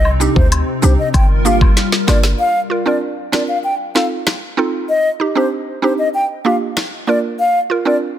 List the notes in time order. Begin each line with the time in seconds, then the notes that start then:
Already playing: C2 C3 C4 D#4
0.05 high woodblock
0.20 C4 D4 D#4 G4, cabasa
0.36 D2 C5, kick
0.52 closed hi-hat, high woodblock
0.82 C2 C4 D4 D#4 G4 C5, cabasa
0.99 D#5
1.14 G1 G3 F4 A#4 G5, kick, closed hi-hat, high woodblock
1.45 A#3 D4 F4 G4 F5, cabasa
1.61 kick, high woodblock
1.77 snare, closed hi-hat
1.92 snare
2.07 G1 A#3 D4 F4 A#4 D5, snare, cabasa, high woodblock
2.24 snare
2.39 F5
2.70 F4 A#4
2.86 C4 D4 F4 A#4 D5
3.32 C4 D4 F4 A#4 D5, cross-stick, snare
3.48 F5
3.64 G5
3.95 C4 D#4 F4 A4 F5, snare
4.27 cross-stick, snare
4.57 C4 D#4 F4 A4
4.89 D#5
5.20 D#4 G4
5.35 C4 D4 D#4 G4 C5
5.82 C4 D4 D#4 G4 C5
5.99 D#5
6.14 G5
6.45 A#3 D4 F4 G4 F5
6.77 cross-stick, snare
7.07 A#3 D4 F4 A#4 D5
7.40 F5
7.70 F4 A#4
7.85 C4 D4 F4 A#4 D5